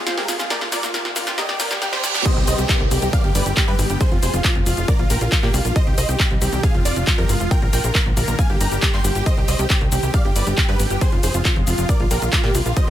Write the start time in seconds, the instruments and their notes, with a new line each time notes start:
Already playing: analog synth pad C3 G#3 F4 G#4, riser
0.06 synth pluck F4, supersaw synth F4, synth arpeggio sound C5, snare, closed hi-hat, shaker
0.17 supersaw synth G4 A#4, synth arpeggio sound G#4, synth pluck A#4, snare, closed hi-hat
0.28 synth pluck F4, supersaw synth F4, synth arpeggio sound G#4, snare, open hi-hat, shaker
0.39 synth pluck F4, synth arpeggio sound F4, supersaw synth F4, snare, closed hi-hat, shaker
0.50 analog synth pad A#2 F3 D4 G4, synth arpeggio sound G4, supersaw synth A#4 D5, synth pluck D5, snare, closed hi-hat, shaker
0.61 synth arpeggio sound A#3, synth pluck F4, supersaw synth F4, snare, closed hi-hat
0.72 synth arpeggio sound F4, supersaw synth A#4 D5, synth pluck D5, snare, open hi-hat, shaker
0.83 synth arpeggio sound A#3, synth pluck F4, supersaw synth F4, snare, closed hi-hat, shaker
0.94 synth pluck F4, supersaw synth F4, synth arpeggio sound A#4, snare, closed hi-hat, shaker
1.05 synth arpeggio sound F4, snare, closed hi-hat
1.16 synth pluck F4, supersaw synth F4, synth arpeggio sound A#4, snare, open hi-hat, shaker
1.27 synth pluck F4, synth arpeggio sound F4, supersaw synth F4, snare, closed hi-hat, shaker
1.38 analog synth pad G3, synth arpeggio sound A#3, supersaw synth G4 D#5, synth pluck D#5, snare, closed hi-hat, reverse cymbal, shaker
1.49 synth pluck G4, supersaw synth G4, synth arpeggio sound D5, snare, closed hi-hat
1.60 synth arpeggio sound G4, supersaw synth A#4 D5, synth pluck D5, snare, open hi-hat, shaker
1.71 synth arpeggio sound A#3, synth pluck G4, supersaw synth G4, snare, closed hi-hat, shaker
1.82 synth pluck G4, supersaw synth G4, synth arpeggio sound G4, snare, closed hi-hat, shaker
1.92 supersaw synth G4 C5, synth arpeggio sound G4, synth pluck C5, snare, closed hi-hat
2.04 synth pluck G4, supersaw synth G4, synth arpeggio sound D5, snare, open hi-hat, shaker
2.15 supersaw synth G4, synth pluck G4, synth arpeggio sound D5, snare, closed hi-hat, shaker
2.25 analog synth pad C3 G3 D#4 G4, supersaw synth C5 D#5, synth pluck D#5, kick, closed hi-hat, crash, downlifter, shaker
2.36 analog synth bass C2, synth pluck G4, supersaw synth G4, closed hi-hat
2.47 analog synth bass C2, supersaw synth C5 D#5, synth pluck D#5, open hi-hat, shaker
2.58 analog synth bass C2, synth pluck G4, supersaw synth G4, closed hi-hat, shaker
2.69 synth pluck G4, supersaw synth G4, kick, clap, closed hi-hat, shaker
2.80 analog synth bass C2, closed hi-hat
2.91 analog synth bass C2, synth pluck G4, supersaw synth G4, open hi-hat, shaker
3.02 analog synth bass C2, synth pluck G4, supersaw synth G4, closed hi-hat, shaker
3.13 analog synth pad D3 G3 B3 G4, supersaw synth D5 F5, synth pluck F5, kick, closed hi-hat, shaker
3.24 analog synth bass G1, synth pluck G4, supersaw synth G4, closed hi-hat
3.35 analog synth bass G1, supersaw synth B4 D5, synth pluck D5, open hi-hat, shaker
3.46 analog synth bass G1, synth pluck G4, supersaw synth G4, closed hi-hat, shaker
3.57 synth pluck G4, supersaw synth G4, kick, clap, closed hi-hat, shaker
3.68 analog synth bass G2, supersaw synth G4 B4, synth pluck B4, closed hi-hat
3.79 analog synth bass G#1, synth pluck G4, supersaw synth G4, open hi-hat, shaker
3.90 analog synth bass G1, synth pluck G4, supersaw synth G4, closed hi-hat, shaker
4.01 analog synth pad C3 F3 G#3 F4, supersaw synth G#4 C5, synth pluck C5, kick, closed hi-hat, shaker
4.12 analog synth bass F1, synth pluck F4, supersaw synth F4, closed hi-hat
4.22 analog synth bass F1, supersaw synth G#4 C5, synth pluck C5, open hi-hat, shaker
4.33 analog synth bass F1, synth pluck F4, supersaw synth F4, closed hi-hat, shaker
4.44 synth pluck F4, supersaw synth F4, kick, clap, closed hi-hat, shaker
4.55 analog synth bass F1, closed hi-hat
4.66 analog synth bass F1, synth pluck F4, supersaw synth F4, open hi-hat, shaker
4.77 analog synth bass F1, synth pluck F4, supersaw synth F4, closed hi-hat, shaker
4.88 analog synth pad D3 G3 A#3, supersaw synth A#4 D5, synth pluck D5, kick, closed hi-hat, shaker
4.99 analog synth bass A#1, synth pluck F4, supersaw synth F4, closed hi-hat
5.10 analog synth bass A#1, supersaw synth G4 A#4, synth pluck A#4, open hi-hat, shaker
5.21 analog synth bass A#1, supersaw synth F4, synth pluck F4, closed hi-hat, shaker
5.32 synth pluck F4, supersaw synth F4, kick, clap, closed hi-hat, shaker
5.43 analog synth bass A#2, supersaw synth A#3 G4, synth pluck G4, clap, closed hi-hat
5.54 analog synth bass C2, synth pluck F4, supersaw synth F4, open hi-hat, shaker
5.65 analog synth bass A#1, supersaw synth F4, synth pluck F4, closed hi-hat, shaker
5.76 analog synth pad C3 D#3 G3 D#4, supersaw synth C5 D#5, synth pluck D#5, kick, closed hi-hat, shaker
5.87 analog synth bass C2, supersaw synth G4, synth pluck G4, closed hi-hat
5.98 analog synth bass C2, supersaw synth C5 D#5, synth pluck D#5, open hi-hat, shaker
6.09 analog synth bass C2, synth pluck G4, supersaw synth G4, closed hi-hat, shaker
6.20 synth pluck G4, supersaw synth G4, kick, clap, closed hi-hat, shaker
6.31 analog synth bass C2, closed hi-hat
6.41 analog synth bass C2, synth pluck G4, supersaw synth G4, open hi-hat, shaker
6.52 analog synth bass C2, synth pluck G4, supersaw synth G4, closed hi-hat, shaker
6.63 analog synth pad F3 G#3 F4, supersaw synth G#4 F5, synth pluck F5, kick, closed hi-hat, shaker
6.74 analog synth bass F1, synth pluck F4, supersaw synth F4, closed hi-hat
6.85 analog synth bass F1, supersaw synth F4 D5, synth pluck D5, open hi-hat, shaker
6.96 analog synth bass F1, supersaw synth F4, synth pluck F4, closed hi-hat, shaker
7.07 synth pluck F4, supersaw synth F4, kick, clap, closed hi-hat, shaker
7.18 analog synth bass F2, supersaw synth G4 A#4, synth pluck A#4, closed hi-hat
7.29 analog synth bass G1, synth pluck F4, supersaw synth F4, open hi-hat, shaker
7.40 analog synth bass F1, supersaw synth F4, synth pluck F4, closed hi-hat, shaker
7.51 analog synth pad D3 G3 A#3, supersaw synth A#4 G5, synth pluck G5, kick, closed hi-hat, shaker
7.62 analog synth bass A#1, supersaw synth A#4, synth pluck A#4, closed hi-hat
7.73 analog synth bass A#1, supersaw synth A#4 G5, synth pluck G5, open hi-hat, shaker
7.84 analog synth bass A#1, supersaw synth A#4, synth pluck A#4, closed hi-hat, shaker
7.95 supersaw synth A#4, synth pluck A#4, kick, clap, closed hi-hat, shaker
8.06 analog synth bass A#1, closed hi-hat
8.17 analog synth bass A#1, supersaw synth A#4, synth pluck A#4, open hi-hat, shaker
8.28 analog synth bass A#1, supersaw synth A#4, synth pluck A#4, closed hi-hat, shaker
8.39 analog synth pad D3 G4, supersaw synth F5 G#5, synth pluck G#5, kick, closed hi-hat, shaker
8.50 analog synth bass G1, supersaw synth G4, synth pluck G4, closed hi-hat
8.61 analog synth bass G1, supersaw synth G5 A#5, synth pluck A#5, open hi-hat, shaker
8.72 analog synth bass G1, supersaw synth G4, synth pluck G4, closed hi-hat, shaker
8.82 supersaw synth G4, synth pluck G4, kick, clap, closed hi-hat, shaker
8.94 analog synth bass G2, supersaw synth G5 C6, synth pluck C6, clap, closed hi-hat
9.04 analog synth bass G1, supersaw synth G4, synth pluck G4, open hi-hat, shaker
9.15 analog synth bass G1, synth pluck G4, supersaw synth G4, closed hi-hat, shaker
9.26 analog synth pad D#3 C4, supersaw synth C5 D#5, synth pluck D#5, kick, closed hi-hat, shaker
9.37 analog synth bass C2, synth pluck G4, supersaw synth G4, closed hi-hat
9.48 analog synth bass C2, supersaw synth C5 D#5, synth pluck D#5, open hi-hat, shaker
9.59 analog synth bass C2, synth pluck G4, supersaw synth G4, closed hi-hat, shaker
9.70 synth pluck G4, supersaw synth G4, kick, clap, closed hi-hat, shaker
9.81 analog synth bass C2, closed hi-hat
9.92 analog synth bass C2, synth pluck G4, supersaw synth G4, open hi-hat, shaker
10.03 analog synth bass C2, synth pluck G4, supersaw synth G4, closed hi-hat, shaker
10.14 analog synth pad D3 G3 B3 G4, supersaw synth D5 F5, synth pluck F5, kick, closed hi-hat, shaker
10.25 analog synth bass G1, synth pluck G4, supersaw synth G4, closed hi-hat
10.36 analog synth bass G1, supersaw synth B4 D5, synth pluck D5, open hi-hat, shaker
10.46 analog synth bass G1, synth pluck G4, supersaw synth G4, closed hi-hat, shaker
10.58 synth pluck G4, supersaw synth G4, kick, clap, closed hi-hat, shaker
10.69 analog synth bass G2, supersaw synth G4 B4, synth pluck B4, closed hi-hat
10.80 analog synth bass G#1, synth pluck G4, supersaw synth G4, open hi-hat, shaker
10.90 analog synth bass G1, synth pluck G4, supersaw synth G4, closed hi-hat, shaker
11.01 analog synth pad C3 F3 G#3 F4, supersaw synth G#4 C5, synth pluck C5, kick, closed hi-hat, shaker
11.12 analog synth bass F1, synth pluck F4, supersaw synth F4, closed hi-hat
11.23 analog synth bass F1, supersaw synth G#4 C5, synth pluck C5, open hi-hat, shaker
11.34 analog synth bass F1, synth pluck F4, supersaw synth F4, closed hi-hat, shaker
11.45 synth pluck F4, supersaw synth F4, kick, clap, closed hi-hat, shaker
11.56 analog synth bass F1, closed hi-hat
11.67 analog synth bass F1, synth pluck F4, supersaw synth F4, open hi-hat, shaker
11.78 analog synth bass F1, supersaw synth F4, synth pluck F4, closed hi-hat, shaker
11.89 analog synth pad D3 G3 A#3 F4, supersaw synth A#4 D5, synth pluck D5, kick, closed hi-hat, shaker
12.00 analog synth bass A#1, synth pluck F4, supersaw synth F4, closed hi-hat
12.11 analog synth bass A#1, supersaw synth G4 A#4, synth pluck A#4, open hi-hat, shaker
12.22 analog synth bass A#1, supersaw synth F4, synth pluck F4, closed hi-hat, shaker
12.33 supersaw synth F4, synth pluck F4, kick, clap, closed hi-hat, shaker
12.44 analog synth bass A#2, supersaw synth A#3 G4, synth pluck G4, clap, closed hi-hat
12.55 analog synth bass C2, supersaw synth F4, synth pluck F4, open hi-hat, shaker
12.66 analog synth bass A#1, synth pluck F4, supersaw synth F4, closed hi-hat, shaker
12.76 analog synth pad C3 D#3 D#4, supersaw synth C5 D#5, synth pluck D#5, kick, closed hi-hat, shaker